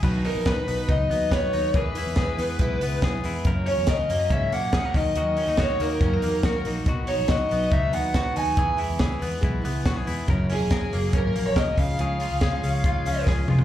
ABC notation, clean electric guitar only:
X:1
M:4/4
L:1/16
Q:1/4=140
K:B
V:1 name="Clean electric guitar"
[B,,B]2 D2 B2 B,2 D2 B,2 B2 D2 | [E,G]2 E2 G2 B,2 E2 B,2 G2 E2 | [F,,A]2 C2 A2 A,2 C2 A,2 G A D,2 | [D,F]2 C D F2 A,2 C D A,2 F2 D2 |
[B,,F]2 D2 F2 B,2 D2 B,2 F2 D2 | [E,G]2 E2 G2 B,2 E2 B,2 F G E2 | [F,,A]2 C2 A2 A,2 C2 A,2 A2 C,2 | [C,G]2 ^E2 G2 C2 E2 C2 G2 E2 |]